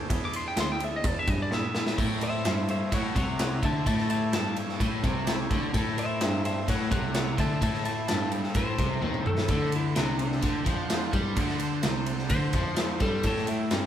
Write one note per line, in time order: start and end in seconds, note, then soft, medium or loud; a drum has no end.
0.09 0.54 E2 loud
0.09 1.96 D4 medium
0.09 1.96 E4 medium
0.09 1.96 G#4 medium
0.09 kick loud
0.09 ride loud
0.25 0.36 D6 loud
0.33 0.46 C6 medium
0.33 ride medium
0.48 0.58 G5 medium
0.56 1.01 D2 loud
0.56 0.70 C6 medium
0.56 snare loud
0.56 ride loud
0.72 0.84 G5 medium
0.80 ride medium
0.84 0.94 E5 loud
0.96 1.07 D#5 medium
1.04 1.26 E2 loud
1.04 1.19 D5 loud
1.04 kick loud
1.04 ride medium
1.19 1.30 E5 medium
1.27 1.50 G2 loud
1.27 1.40 D#5 medium
1.27 kick loud
1.27 ride medium
1.42 1.53 D5 medium
1.51 1.95 A#2 medium
1.51 1.98 E5 loud
1.51 snare medium
1.75 snare medium
1.87 snare medium
1.98 2.42 A2 loud
1.98 2.45 A2 loud
1.98 5.70 G4 medium
1.98 5.70 A4 medium
1.98 5.70 C#5 medium
1.98 kick loud
1.98 crash loud
2.21 2.45 C5 medium
2.21 2.45 E5 medium
2.21 ride medium
2.45 2.91 G2 medium
2.45 2.89 G2 medium
2.45 2.67 C5 medium
2.45 2.69 E5 medium
2.45 snare loud
2.45 ride medium
2.68 2.91 C5 medium
2.68 2.93 E5 medium
2.68 ride medium
2.92 3.15 A2 loud
2.92 3.14 A2 medium
2.92 3.15 C#5 medium
2.92 3.17 F#5 medium
2.92 kick medium
2.92 ride medium
3.15 3.60 C2 medium
3.15 3.62 C3 medium
3.15 3.39 C#5 medium
3.15 3.40 F#5 medium
3.15 kick loud
3.15 ride medium
3.39 3.62 C#5 medium
3.39 3.63 F#5 medium
3.39 snare loud
3.39 ride medium
3.63 3.85 D2 medium
3.63 3.86 D3 loud
3.63 3.85 E5 medium
3.63 3.86 A5 medium
3.63 kick loud
3.63 ride medium
3.86 4.33 A2 loud
3.86 4.30 A2 medium
3.86 4.08 E5 medium
3.86 4.09 A5 medium
3.86 kick medium
3.86 ride medium
3.99 snare soft
4.10 4.32 E5 medium
4.10 4.33 A5 medium
4.10 ride medium
4.33 4.77 G2 medium
4.33 4.80 G2 medium
4.33 4.57 A5 medium
4.33 snare loud
4.33 ride medium
4.57 ride medium
4.69 snare soft
4.80 5.02 A2 medium
4.80 5.03 A2 loud
4.80 kick loud
4.80 ride medium
5.04 5.47 C2 medium
5.04 5.50 C3 loud
5.04 kick loud
5.04 ride medium
5.27 snare loud
5.27 ride medium
5.51 5.72 D2 medium
5.51 5.74 D3 medium
5.51 kick loud
5.51 ride medium
5.74 6.18 A2 loud
5.74 6.20 A2 loud
5.74 9.46 A3 medium
5.74 9.46 G4 medium
5.74 9.46 A4 medium
5.74 kick medium
5.74 ride medium
5.98 6.21 C5 medium
5.98 6.21 E5 medium
5.98 ride medium
6.21 6.67 G2 loud
6.21 6.65 G2 medium
6.21 6.43 C5 medium
6.21 6.44 E5 medium
6.21 snare loud
6.21 ride medium
6.45 6.67 C5 medium
6.45 6.68 E5 medium
6.45 ride medium
6.68 6.90 A2 medium
6.68 6.91 A2 loud
6.68 6.90 C#5 medium
6.68 6.91 F#5 medium
6.68 kick medium
6.68 ride medium
6.91 7.35 C2 medium
6.91 7.38 C3 loud
6.91 7.13 C#5 medium
6.91 7.14 F#5 medium
6.91 kick loud
6.91 ride medium
7.14 7.36 C#5 medium
7.14 7.38 F#5 medium
7.14 snare loud
7.14 ride medium
7.38 7.60 D2 medium
7.38 7.61 D3 loud
7.38 7.61 E5 medium
7.38 7.62 A5 medium
7.38 kick loud
7.38 ride medium
7.61 8.05 A2 loud
7.61 8.08 A2 loud
7.61 7.84 E5 medium
7.61 7.84 A5 medium
7.61 kick medium
7.61 ride medium
7.74 snare soft
7.85 8.07 E5 medium
7.85 8.07 A5 medium
7.85 ride medium
8.08 8.54 G2 loud
8.08 8.52 G2 medium
8.08 8.31 A5 medium
8.08 snare loud
8.08 ride medium
8.32 ride medium
8.43 snare soft
8.55 8.77 A2 medium
8.55 8.78 A2 medium
8.55 9.24 C5 medium
8.55 kick loud
8.55 ride medium
8.78 9.01 C2 medium
8.78 9.01 C3 loud
8.78 kick loud
8.78 ride medium
9.02 9.46 D#2 medium
9.02 9.48 D#3 medium
9.02 high tom medium
9.14 mid tom medium
9.26 9.49 A4 medium
9.26 mid tom medium
9.38 snare medium
9.48 9.92 D2 medium
9.48 9.95 D3 loud
9.48 13.20 D4 medium
9.48 9.73 A4 medium
9.48 13.20 C5 medium
9.48 13.20 F#5 medium
9.48 kick medium
9.48 ride medium
9.72 9.97 E4 medium
9.72 ride medium
9.96 10.40 C2 medium
9.96 10.42 C3 medium
9.96 10.19 D4 medium
9.96 snare loud
9.96 ride medium
10.19 10.43 D4 medium
10.19 ride medium
10.32 snare soft
10.42 10.65 D2 medium
10.42 10.65 D3 loud
10.42 kick medium
10.42 ride medium
10.65 11.10 F2 medium
10.65 11.12 F3 medium
10.65 kick loud
10.65 ride medium
10.90 snare loud
10.90 ride medium
11.13 11.35 G2 medium
11.13 11.36 G3 medium
11.13 kick loud
11.13 ride medium
11.36 11.80 D2 medium
11.36 11.84 D3 loud
11.36 kick loud
11.36 ride medium
11.49 snare soft
11.59 ride medium
11.83 12.27 C2 medium
11.83 12.30 C3 loud
11.83 snare loud
11.83 ride medium
12.06 ride medium
12.19 snare soft
12.30 12.52 D2 medium
12.30 12.54 D3 loud
12.30 12.99 C5 loud
12.30 kick loud
12.30 ride medium
12.53 12.97 F2 medium
12.53 13.00 F3 loud
12.53 kick loud
12.53 ride medium
12.76 snare loud
12.76 ride medium
13.00 13.23 G2 medium
13.00 13.24 G3 loud
13.00 13.24 A4 medium
13.00 kick loud
13.00 ride medium
13.23 13.70 A2 loud
13.23 13.68 A2 loud
13.23 13.86 G4 medium
13.23 13.86 A4 medium
13.23 13.48 A4 medium
13.23 13.86 C#5 medium
13.23 kick medium
13.23 ride medium
13.37 snare soft
13.47 13.71 E4 medium
13.47 ride medium
13.71 13.86 G2 medium
13.71 13.86 C4 medium
13.71 snare loud
13.71 ride medium